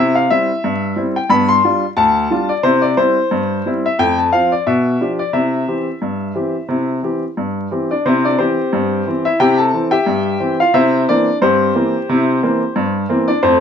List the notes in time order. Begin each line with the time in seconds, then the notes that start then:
Already playing: C3 E5
0.00 E4
0.15 F5
0.30 G3 C4 E4 E5
0.64 G2
0.96 G3 C4 E4
1.16 G5
1.30 G2 B3 B5
1.49 C6
1.64 G3 D4 F4
1.97 D2 A5
2.31 G3 D4 F4
2.49 D5
2.63 C3 E4 C5
2.82 D5
2.97 G3 C4 E4 C5
3.31 G2
3.66 G3 C4 E4
3.86 E5
3.99 F2 A3 G5
4.18 A5
4.33 F3 C4 F4 F5
4.52 D5
4.67 B2 E5
5.01 F3 D4 G4
5.19 D5
5.33 C3 E4 E5
5.68 E3 C4 G4
6.02 G2
6.35 E3 C4 G4
6.69 C3 E4
7.03 E3 C4 G4
7.37 G2
7.71 E3 C4 G4
7.91 D4 D5
8.06 C3 C4 E4 C5
8.25 D4 D5
8.39 E3 C4 G4 C5
8.73 G2
9.07 E3 C4
9.25 E4 E5
9.40 C3 E4 G4 G5
9.58 A4 A5
9.73 E3 C4
9.91 G4 E5 G5
10.06 G2
10.40 E3 C4
10.60 F4 F5
10.74 C3 E4 C5 E5
11.09 E3 A#3 C4 D4 D5
11.42 G2 C4 G4 C5
11.75 E3 A#3 C4
12.09 C3 E4
12.43 E3 A#3 C4
12.76 G2
13.09 E3 A#3 C4
13.28 D4 D5
13.43 F2 A3 C4 C5